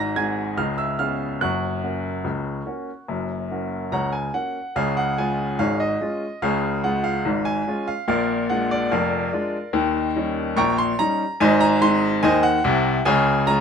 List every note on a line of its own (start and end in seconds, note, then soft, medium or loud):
0.00 0.59 G#1 medium
0.00 0.59 G#2 medium
0.00 0.15 A#5 medium
0.00 0.16 G#6 loud
0.00 0.16 A#6 loud
0.16 0.39 G#3 medium
0.16 0.39 C4 medium
0.16 0.39 F#4 medium
0.16 0.55 G#5 medium
0.16 0.58 G#6 loud
0.57 0.93 C#2 medium
0.57 0.93 C#3 medium
0.57 0.77 F5 medium
0.57 0.78 F6 medium
0.78 0.98 E5 medium
0.78 0.99 E6 medium
0.99 1.22 B3 soft
0.99 1.22 C#4 medium
0.99 1.23 G#4 medium
0.99 1.38 F5 medium
0.99 1.41 F6 medium
1.41 1.77 F#1 medium
1.41 1.77 F#2 medium
1.41 3.92 F#5 medium
1.41 4.31 C#6 medium
1.41 4.34 F#6 medium
1.84 2.07 A#3 soft
1.84 2.07 C#4 soft
1.84 2.07 F#4 soft
2.24 2.60 C#2 medium
2.24 2.60 C#3 medium
2.66 2.89 A#3 soft
2.66 2.90 C#4 soft
2.66 2.90 F#4 soft
3.08 3.44 F#1 medium
3.08 3.44 F#2 medium
3.51 3.74 A#3 medium
3.51 3.74 C#4 soft
3.51 3.74 F#4 soft
3.92 4.28 C#2 medium
3.92 4.28 C#3 medium
3.92 4.12 C#5 medium
3.92 4.12 F#5 medium
3.92 4.13 A#5 medium
4.12 4.34 G#5 medium
4.34 4.57 A#3 soft
4.34 4.57 C#4 soft
4.34 4.58 F#4 soft
4.34 4.76 F#5 medium
4.76 5.11 C#2 medium
4.76 5.11 C#3 medium
4.76 4.96 G#4 medium
4.76 4.96 C#5 medium
4.76 4.97 F5 loud
4.97 5.18 F#5 loud
5.18 5.41 G#3 medium
5.18 5.41 C#4 medium
5.18 5.41 F4 medium
5.18 5.60 G#5 loud
5.59 5.94 G#1 medium
5.59 5.95 G#2 medium
5.59 5.79 G#4 medium
5.59 5.79 C#5 medium
5.59 5.80 F5 loud
5.80 6.42 D#5 medium
6.01 6.24 G#3 medium
6.01 6.24 C#4 soft
6.01 6.24 F4 medium
6.42 6.78 C#2 medium
6.42 6.78 C#3 medium
6.42 6.82 G#4 medium
6.42 6.82 C#5 medium
6.42 6.84 F5 loud
6.84 7.07 G#3 medium
6.84 7.07 C#4 medium
6.84 7.08 F4 medium
6.84 7.05 F#5 medium
7.04 7.46 F5 loud
7.25 7.61 G#1 medium
7.25 7.61 G#2 medium
7.45 7.87 G#5 loud
7.68 7.90 G#3 medium
7.68 7.91 C#4 medium
7.68 7.91 F4 medium
7.88 8.07 F5 loud
8.08 8.44 A#1 medium
8.08 8.44 A#2 loud
8.08 8.48 A#4 medium
8.08 8.48 D5 medium
8.08 8.50 F5 loud
8.50 8.73 G#3 medium
8.50 8.73 D4 medium
8.50 8.73 F4 medium
8.50 8.71 F#5 loud
8.71 8.91 D5 loud
8.91 9.27 F1 medium
8.91 9.27 F2 medium
8.91 10.12 A#4 medium
8.91 10.12 D5 medium
8.91 10.16 F5 medium
9.33 9.56 G#3 medium
9.33 9.56 D4 medium
9.33 9.56 F4 medium
9.73 10.09 D#2 loud
9.73 10.09 D#3 loud
10.16 10.39 G3 medium
10.16 10.39 C#4 medium
10.16 10.39 D#4 medium
10.56 10.92 A#1 loud
10.56 10.92 A#2 loud
10.56 10.77 G5 medium
10.56 10.77 A#5 medium
10.56 10.78 C#6 loud
10.78 10.99 C6 loud
10.99 11.22 G3 medium
10.99 11.22 C#4 medium
10.99 11.22 D#4 medium
10.99 11.40 A#5 loud
11.40 11.75 G#1 loud
11.40 11.75 G#2 loud
11.40 11.60 C5 loud
11.40 11.60 D#5 loud
11.40 11.61 G#5 loud
11.61 11.81 A#5 loud
11.81 12.04 G#3 medium
11.81 12.05 C4 medium
11.81 12.05 D#4 medium
11.81 12.23 C6 loud
12.23 12.58 D#2 loud
12.23 12.58 D#3 loud
12.23 12.43 C5 loud
12.23 12.43 D#5 loud
12.23 12.44 G#5 loud
12.43 13.06 F#5 loud
12.64 12.98 C2 loud
12.64 12.98 C3 loud
13.05 13.41 C#2 loud
13.05 13.41 C#3 loud
13.05 13.45 C#5 loud
13.05 13.45 F5 medium
13.05 13.47 G#5 loud
13.47 13.61 G#3 medium
13.47 13.61 C#4 medium
13.47 13.61 F4 medium
13.47 13.61 A#5 loud